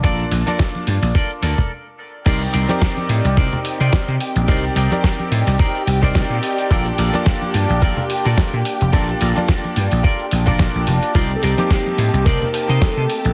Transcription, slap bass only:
X:1
M:4/4
L:1/16
Q:"Swing 16ths" 1/4=108
K:Cdor
V:1 name="Slap bass" clef=bass
B,,, z B,,, z3 G,, B,,, z2 D,, z4 z | C,, z C,, z3 A,, C,, C,, z2 C, z C, z B,,, | C,, z C,, z3 A,, C,, z2 C,,2 z B,, z2 | B,,, z B,,, z3 G,, B,,, B,,, z2 B,, z B,, z F,,, |
B,,, z B,,, z3 G,, B,,, z2 B,,,2 z B,,, F,,, z | C,, z C,, z3 A,, C,, C,, z2 C, z C, z B,,, |]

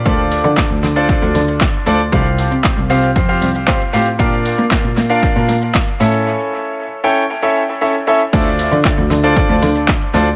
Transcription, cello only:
X:1
M:4/4
L:1/16
Q:1/4=116
K:Dm
V:1 name="Cello" clef=bass
D,,2 z D, z D,, D,2 z D,, D,2 z2 D,,2 | C,,2 z C, z C,, C,2 F,,2 C,,2 z2 A,,2 | B,,2 z B, z B,, B,2 z B,, B,2 z2 A,,2 | z16 |
D,,2 z D, z D,, D,2 z D,, D,2 z2 D,,2 |]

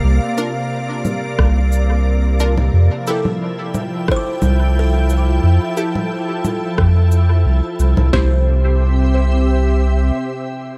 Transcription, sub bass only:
X:1
M:4/4
L:1/16
Q:"Swing 16ths" 1/4=89
K:Cmix
V:1 name="Sub bass" clef=bass
C,, z6 z C,,8 | F,, z8 z C,,6 | F,, z6 z F,,4 C,, z C,, C,, | C,,12 z4 |]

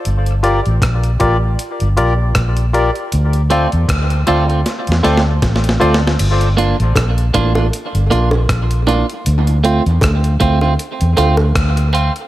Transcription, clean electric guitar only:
X:1
M:4/4
L:1/16
Q:"Swing 16ths" 1/4=78
K:Gdor
V:1 name="Clean electric guitar"
z16 | z2 [A,CF] z3 [A,CF] [A,CF] z2 [A,CF] z3 [A,CF] z | z2 [B,DF] z3 [B,DF] [B,DF] z2 [B,DF] z3 [B,DF] z | z2 [A,CF] z3 [A,CF] [A,CF] z2 [A,CF] z3 [A,CF] z |]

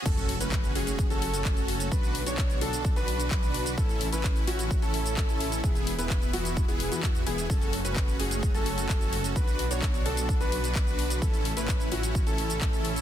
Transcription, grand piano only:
X:1
M:4/4
L:1/16
Q:1/4=129
K:A
V:1 name="Grand piano"
A3 B3 G3 A3 z4 | B3 c3 A3 B3 z4 | A3 B3 F3 A3 z4 | G3 B3 F3 G2 F3 G2 |
A3 B3 G3 A3 A4 | B3 c3 A3 B3 z4 | A3 B3 F3 A3 z4 |]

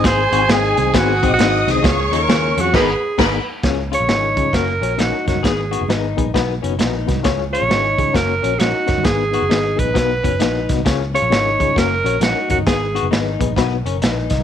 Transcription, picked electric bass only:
X:1
M:4/4
L:1/16
Q:"Swing" 1/4=133
K:G#dor
V:1 name="Picked electric bass" clef=bass
G,,,2 G,,,2 G,,,2 ^B,,,2 G,,,3 A,,, G,,,2 B,,,2 | C,,2 D,,2 D,,2 E,,2 G,,,2 z2 G,,,2 z2 | C,,3 A,,, G,,,2 C,2 F,,,2 A,,,2 A,,, z F,,, =G,,, | G,,,3 F,,, G,,,2 A,,,2 B,,,2 F,,,2 A,,,2 ^B,,,2 |
C,,3 A,,, G,,,2 C,2 F,,,2 A,,,2 A,,, z F,,, =G,,, | G,,,3 F,,, G,,,2 A,,,2 B,,,2 F,,,2 A,,,2 ^B,,,2 | C,,3 A,,, G,,,2 C,2 F,,,2 A,,,2 A,,, z F,,, =G,,, | G,,,3 F,,, G,,,2 A,,,2 B,,,2 F,,,2 A,,,2 ^B,,,2 |]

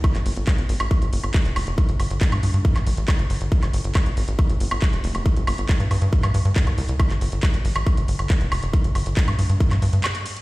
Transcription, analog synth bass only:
X:1
M:4/4
L:1/16
Q:1/4=138
K:none
V:1 name="Analog synth bass" clef=bass
z G,,, G,,, G,,, z _A,,, A,,, A,,, z G,,, G,,, G,,, z F,,, F,,, F,,, | z G,,, G,,, G,,, z G,, G,, G,, z _A,,, A,,, A,,, z G,,, G,,, G,,, | z G,,, G,,, G,,, z _A,,, A,,, A,,, z G,,, G,,, G,,, z F,,, F,,, F,,, | z G,,, G,,, G,,, z G,, G,, G,, z G,, G,, G,, z C,, C,, C,, |
z G,,, G,,, G,,, z _A,,, A,,, A,,, z G,,, G,,, G,,, z F,,, F,,, F,,, | z G,,, G,,, G,,, z G,, G,, G,, z G,, G,, G,, z4 |]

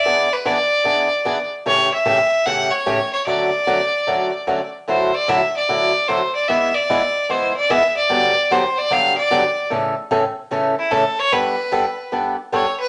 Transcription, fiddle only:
X:1
M:4/4
L:1/8
Q:"Swing" 1/4=149
K:D
V:1 name="Fiddle"
d B d4- d z | c e3 f c2 c | d6- d z | =c d e d3 c d |
e d3 =c d e d- | d2 =c d =f d3 | z4 z E A c | B4 z2 c B |]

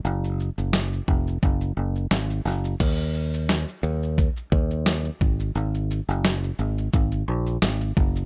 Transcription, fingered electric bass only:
X:1
M:4/4
L:1/16
Q:"Swing 16ths" 1/4=87
K:F#
V:1 name="Fingered electric bass" clef=bass
F,,,3 F,,,3 E,,,2 F,,,2 F,,,2 G,,,2 F,,,2 | D,,4- D,, z D,,3 z D,,4 G,,,2 | G,,,3 F,,,3 G,,,2 G,,,2 A,,,2 G,,,2 F,,,2 |]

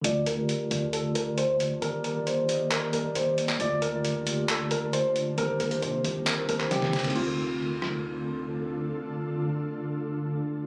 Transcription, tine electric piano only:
X:1
M:4/4
L:1/16
Q:1/4=135
K:Dphr
V:1 name="Tine electric piano"
[D,A,Fd]2 z [D,A,FG]2 z [D,A,Fd]3 z [D,A,Fd]4- [D,A,Fd] z | [E,B,Gd]2 z [E,B,Gd]2 z [E,B,Ge]3 z [E,B,Gd]4- [E,B,Gd] z | [D,A,Fd]2 z [D,A,Fd]2 z [D,A,FG]3 z [D,A,Fd]4- [D,A,Fd] z | [E,B,Gc]2 z [E,B,Gc]2 z [E,B,GB]3 z [E,B,Gc]4- [E,B,Gc] z |
[D,A,FA]16- | [D,A,FA]16 |]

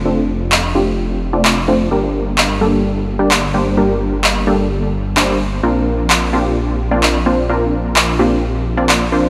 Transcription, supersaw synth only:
X:1
M:4/4
L:1/16
Q:1/4=129
K:Gm
V:1 name="Supersaw synth"
[A,CDFA]6 [A,CDFG]4 z [A,CDFd]2 z [A,CDFc]2 | [G,B,DGB]6 [G,B,DGA]4 z [G,B,DGd]2 z [G,B,DGc]2 | [G,B,DGB]6 [G,B,DGA]4 z2 [G,B,DGc]2 z2 | [B,CDFB]6 [B,CDFG]4 z [B,CDFd]2 z [B,CDFc]2 |
[B,CDFB]6 [B,CDFG]4 z [B,CDFd]2 z [B,CDFc]2 |]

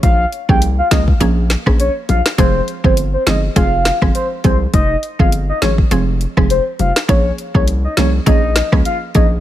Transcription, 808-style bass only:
X:1
M:4/4
L:1/16
Q:"Swing 16ths" 1/4=102
K:Fm
V:1 name="808-style bass" clef=bass
B,,,2 z C,,3 D,,2 B,,,3 B,,,2 z B,,, z | F,,,2 z G,,,3 G,,,2 F,,,3 G,,, z2 C,,2 | F,,,2 z G,,,3 A,,,2 F,,,3 F,,,2 z F,,, z | B,,,2 z C,,3 C,,2 B,,,3 D,, z2 B,,,2 |]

